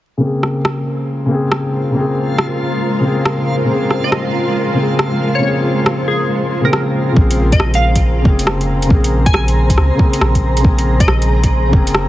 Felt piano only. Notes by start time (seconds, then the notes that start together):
0.17 C#3 A#3
0.23 C4 G#4
1.26 C#3 A#3
1.31 C4 G#4
1.91 C#3 A#3
1.97 C4 G#4
3.00 C#3 A#3
3.05 C4 G#4
3.65 C#3 A#3
3.70 C4 G#4
4.73 C#3 A#3
4.79 C4 G#4
5.39 C#3 A#3
5.44 C4 G#4
6.61 C#3 A#3
6.66 C4 G#4
7.12 C#3 A#3
7.17 C4 G#4
8.22 C#3 A#3
8.27 C4 G#4
8.86 C#3 A#3
8.92 C4 G#4
9.95 C#3 A#3
10.00 C4 G#4
10.60 C#3 A#3
10.65 C4 G#4
11.69 C#3 A#3
11.74 C4 G#4